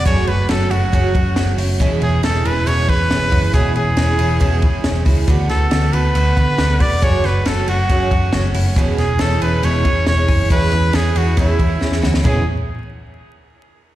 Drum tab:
CC |----------------|----------------|----------------|----------------|
RD |x-x-x-x-x-x-x-x-|x-x-x-x-x-x-x-x-|x-x-x-x-x-x-x-x-|x-x-x-x-x-x-x-x-|
HH |p-------------o-|p-------------o-|p-------------o-|p-------------o-|
SD |----o-------o---|----o-------o---|----o-------o---|--o-o-------o---|
FT |----------------|----------------|----------------|----------------|
BD |o-------o-o-----|o---------o---o-|o-------o-o---o-|o---------o---o-|

CC |----------------|----------------|----------------|x---------------|
RD |x-x-x-x-x-x-x-x-|x-x-x-x-x-x-x-x-|x-x-x-x-x-x-----|----------------|
HH |p-------------o-|p-------------o-|p---------------|----------------|
SD |--o-o-------o---|--o-o-------o---|----o-------oooo|----------------|
FT |----------------|----------------|----------------|o---------------|
BD |o-------o-o-----|o---------o---o-|o-------o-o-----|o---------------|